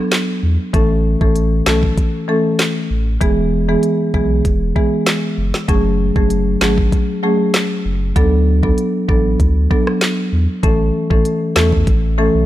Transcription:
0.12 snare loud
0.12 clap loud
0.43 0.58 E2 medium
0.73 1.16 A1 loud
0.73 0.92 E3 medium
0.73 0.92 A3 medium
0.73 0.92 C#4 medium
0.73 0.92 A4 medium
0.73 kick loud
0.73 closed hi-hat medium
1.21 1.62 A1 loud
1.21 1.63 E3 medium
1.21 1.63 A3 medium
1.21 1.63 C#4 medium
1.21 1.63 A4 medium
1.21 kick loud
1.36 closed hi-hat medium
1.66 1.94 B1 medium
1.66 1.95 E3 medium
1.66 1.95 A3 medium
1.66 1.95 C#4 medium
1.66 1.95 A4 medium
1.66 snare loud
1.66 clap medium
1.83 kick medium
1.98 kick medium
1.98 closed hi-hat medium
2.28 2.47 E3 medium
2.28 2.47 A3 medium
2.28 2.47 C#4 medium
2.28 2.47 A4 medium
2.59 snare loud
2.59 clap loud
2.59 closed hi-hat medium
2.90 3.18 A1 medium
3.21 3.76 E1 loud
3.21 3.40 E3 medium
3.21 3.40 G#3 medium
3.21 3.40 B3 medium
3.21 3.40 G#4 medium
3.21 kick loud
3.21 closed hi-hat medium
3.68 4.10 E3 medium
3.68 4.11 G#3 medium
3.68 4.11 B3 medium
3.68 4.11 G#4 medium
3.83 closed hi-hat medium
4.14 4.42 B1 medium
4.14 4.42 E3 medium
4.14 4.43 G#3 medium
4.14 4.43 B3 medium
4.14 4.43 G#4 medium
4.14 kick medium
4.45 4.73 E1 loud
4.45 kick medium
4.45 closed hi-hat medium
4.76 4.94 E3 medium
4.76 4.94 G#3 medium
4.76 4.94 B3 medium
4.76 4.94 G#4 medium
4.76 kick medium
5.07 snare loud
5.07 clap loud
5.07 closed hi-hat medium
5.38 5.52 F#1 medium
5.54 snare medium
5.68 6.11 F#1 loud
5.68 5.87 F#3 medium
5.68 5.87 A3 medium
5.68 5.87 C#4 medium
5.68 5.87 G#4 medium
5.68 kick loud
5.68 closed hi-hat medium
6.16 6.57 F#1 medium
6.16 6.58 F#3 medium
6.16 6.58 A3 medium
6.16 6.58 C#4 medium
6.16 6.58 G#4 medium
6.16 kick loud
6.30 closed hi-hat medium
6.61 6.89 G#1 medium
6.61 6.90 F#3 medium
6.61 6.90 A3 medium
6.61 6.90 C#4 medium
6.61 6.90 G#4 medium
6.61 snare loud
6.61 clap medium
6.78 kick medium
6.92 kick medium
6.92 closed hi-hat medium
7.23 7.42 F#3 medium
7.23 7.42 A3 medium
7.23 7.42 C#4 medium
7.23 7.42 G#4 medium
7.54 snare loud
7.54 clap loud
7.54 closed hi-hat medium
7.85 8.13 F#1 medium
8.16 8.71 D2 loud
8.16 8.34 F#3 medium
8.16 8.34 B3 medium
8.16 8.35 D4 medium
8.16 8.35 A4 loud
8.16 kick loud
8.16 closed hi-hat medium
8.63 9.05 F#3 medium
8.63 9.05 B3 medium
8.63 9.05 D4 medium
8.63 9.05 A4 medium
8.63 kick loud
8.78 closed hi-hat medium
9.09 9.36 A1 medium
9.09 9.37 F#3 medium
9.09 9.37 B3 medium
9.09 9.38 D4 medium
9.09 9.38 A4 medium
9.09 kick medium
9.40 9.67 D2 loud
9.40 kick medium
9.40 closed hi-hat medium
9.70 9.89 F#3 medium
9.70 9.89 B3 medium
9.70 9.89 D4 medium
9.70 9.89 A4 medium
9.70 kick medium
9.87 cross-stick medium
10.01 snare loud
10.01 clap medium
10.01 closed hi-hat medium
10.33 10.47 E2 medium
10.63 10.91 A1 loud
10.63 10.82 E3 medium
10.63 10.82 A3 medium
10.63 10.82 C#4 medium
10.63 10.82 A4 medium
10.63 kick loud
10.63 closed hi-hat medium
11.10 11.24 A1 medium
11.10 11.53 E3 medium
11.10 11.53 A3 medium
11.10 11.53 C#4 medium
11.10 11.53 A4 medium
11.10 kick loud
11.25 closed hi-hat medium
11.56 11.84 E2 medium
11.56 11.85 E3 medium
11.56 11.85 A3 medium
11.56 11.85 C#4 medium
11.56 11.85 A4 medium
11.56 snare loud
11.56 clap loud
11.72 kick medium
11.87 12.29 A1 loud
11.87 kick loud
11.87 closed hi-hat medium
12.18 12.36 E3 medium
12.18 12.36 A3 medium
12.18 12.37 C#4 medium
12.18 12.37 A4 medium
12.34 12.46 B1 medium

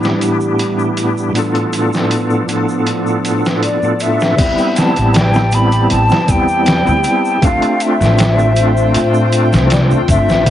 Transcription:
0.00 1.30 A2 medium
0.00 4.35 A2 medium
0.00 1.32 E3 medium
0.00 1.32 G3 medium
0.00 1.30 B3 medium
0.00 1.31 D4 medium
0.00 1.32 E4 medium
0.00 1.33 G4 medium
0.00 shaker soft
0.05 snare soft
0.21 closed hi-hat medium
0.21 shaker medium
0.40 shaker soft
0.59 closed hi-hat medium
0.59 shaker soft
0.79 shaker soft
0.97 closed hi-hat medium
0.97 shaker medium
1.17 shaker soft
1.33 2.43 A2 medium
1.33 4.35 F3 medium
1.33 2.44 B3 medium
1.33 4.35 B3 medium
1.33 4.35 D4 medium
1.33 2.45 D4 medium
1.33 closed hi-hat medium
1.33 shaker medium
1.38 2.46 F4 medium
1.38 2.46 A4 medium
1.55 closed hi-hat soft
1.55 shaker soft
1.73 closed hi-hat medium
1.73 shaker medium
1.93 snare soft
1.93 shaker soft
2.11 closed hi-hat medium
2.11 shaker soft
2.30 shaker soft
2.47 3.77 A2 medium
2.47 3.78 B3 medium
2.47 3.79 D4 medium
2.47 closed hi-hat medium
2.47 shaker loud
2.51 3.80 F4 medium
2.51 3.80 A4 medium
2.69 shaker soft
2.87 closed hi-hat medium
2.87 shaker medium
3.07 shaker soft
3.25 closed hi-hat medium
3.25 shaker loud
3.45 snare medium
3.45 shaker soft
3.63 4.04 D5 medium
3.63 closed hi-hat medium
3.63 shaker soft
3.82 4.34 A2 medium
3.82 4.34 B3 medium
3.82 4.35 D4 medium
3.82 4.35 F4 medium
3.82 4.35 A4 medium
3.82 shaker soft
4.00 4.80 E5 loud
4.00 closed hi-hat medium
4.00 shaker medium
4.20 snare soft
4.20 shaker soft
4.37 5.47 G3 medium
4.37 5.48 B3 medium
4.37 5.49 C4 medium
4.37 7.39 G4 medium
4.37 7.39 G5 medium
4.37 7.39 A5 medium
4.37 kick loud
4.37 closed hi-hat medium
4.37 crash medium
4.37 shaker medium
4.43 5.50 E4 loud
4.58 shaker soft
4.76 5.18 A5 medium
4.76 snare soft
4.76 closed hi-hat medium
4.76 shaker loud
4.96 5.87 A1 loud
4.96 closed hi-hat soft
4.96 shaker soft
5.14 5.56 G5 loud
5.14 snare loud
5.14 closed hi-hat medium
5.14 shaker medium
5.34 snare soft
5.34 shaker soft
5.51 7.37 G3 medium
5.51 7.38 B3 medium
5.51 7.39 C4 medium
5.51 5.92 B5 loud
5.51 closed hi-hat medium
5.51 shaker medium
5.56 7.40 E4 medium
5.72 closed hi-hat soft
5.72 shaker soft
5.90 6.08 A1 medium
5.90 6.32 A5 loud
5.90 closed hi-hat medium
5.90 shaker soft
6.09 snare medium
6.09 shaker soft
6.28 6.82 E2 medium
6.28 7.46 G5 loud
6.28 kick loud
6.28 closed hi-hat medium
6.28 shaker medium
6.48 shaker soft
6.66 snare loud
6.66 closed hi-hat medium
6.66 shaker medium
6.87 7.02 D2 loud
6.87 shaker soft
7.04 closed hi-hat medium
7.04 shaker medium
7.25 shaker soft
7.41 8.51 A3 loud
7.41 8.52 C4 medium
7.41 8.53 D4 medium
7.41 10.43 F4 medium
7.41 10.43 C5 medium
7.41 7.84 F5 loud
7.41 10.50 G5 medium
7.41 kick loud
7.41 closed hi-hat medium
7.41 shaker medium
7.47 8.54 F4 loud
7.62 closed hi-hat soft
7.62 shaker soft
7.80 9.45 E5 loud
7.80 closed hi-hat medium
7.80 shaker loud
8.00 8.91 A1 medium
8.00 snare soft
8.00 shaker soft
8.18 snare loud
8.18 closed hi-hat medium
8.18 shaker medium
8.39 shaker soft
8.55 10.41 A3 medium
8.55 10.42 C4 medium
8.55 10.43 D4 medium
8.55 closed hi-hat medium
8.55 shaker loud
8.61 10.44 F4 medium
8.77 shaker soft
8.94 9.54 A2 medium
8.94 closed hi-hat medium
8.94 shaker medium
9.14 shaker soft
9.32 closed hi-hat medium
9.32 shaker loud
9.52 9.92 C2 loud
9.52 snare medium
9.52 shaker soft
9.70 9.81 D5 medium
9.70 snare loud
9.70 closed hi-hat medium
9.70 shaker medium
9.90 10.10 E2 medium
9.90 shaker soft
10.08 10.26 G1 loud
10.08 10.50 E5 loud
10.08 kick medium
10.08 closed hi-hat medium
10.08 shaker loud
10.28 10.50 A1 medium
10.28 snare soft
10.28 shaker soft
10.45 10.50 G3 medium
10.45 10.50 B3 medium
10.45 10.50 E4 medium
10.45 10.50 D5 medium
10.45 kick loud
10.45 closed hi-hat medium
10.45 shaker soft

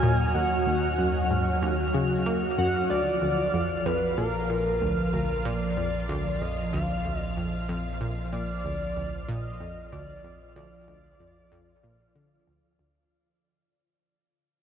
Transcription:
0.00 2.87 D#2 medium
0.00 0.24 A#2 loud
0.00 2.90 F#3 medium
0.00 2.90 F#4 medium
0.00 2.90 C#5 medium
0.00 2.90 D#5 medium
0.00 0.36 G#5 loud
0.00 13.13 F6 medium
0.34 0.47 D#2 medium
0.34 2.26 F#5 loud
0.67 0.97 D#2 medium
0.99 1.19 F#2 medium
1.30 1.51 G#2 medium
1.62 1.83 D#2 loud
1.94 2.25 C#3 medium
2.26 2.47 A#3 medium
2.58 2.71 F#2 medium
2.58 2.88 F#5 loud
2.90 13.08 A#1 medium
2.90 3.02 D2 loud
2.90 13.11 F3 medium
2.90 3.87 D5 loud
3.22 3.43 D2 medium
3.37 13.12 F4 medium
3.37 13.11 F5 medium
3.54 3.75 F2 medium
3.86 4.06 F2 loud
3.86 4.17 B4 loud
4.18 4.30 A#2 medium
4.18 5.10 A#4 medium
4.50 4.80 A#2 medium
4.81 5.02 D2 medium
5.13 5.34 D2 medium
5.13 5.47 A#4 medium
5.45 5.66 A#2 loud
5.45 6.43 D5 loud
5.77 5.90 F2 medium
6.09 6.30 D2 loud
6.41 6.62 F2 medium
6.41 6.73 D#5 loud
6.73 6.85 D2 loud
6.73 7.19 F5 medium
7.05 7.26 D2 medium
7.19 7.33 D#5 medium
7.37 7.58 F2 medium
7.69 7.90 F2 loud
8.01 8.13 A#2 medium
8.33 8.63 A#2 medium
8.33 9.30 D5 loud
8.65 8.85 D2 medium
8.97 9.17 D2 medium
9.28 9.49 A#2 loud
9.28 9.92 D#5 loud
9.60 9.73 F2 medium
9.92 10.13 D2 loud
9.92 10.52 D5 loud
10.24 10.45 F2 medium
10.56 10.68 D2 loud
10.56 12.44 D5 loud
10.88 11.09 D2 medium
11.20 11.41 F2 medium
11.52 11.73 F2 loud
11.84 11.96 A#2 medium
12.15 12.46 D3 medium
12.47 12.60 D2 medium
12.79 13.00 D2 medium

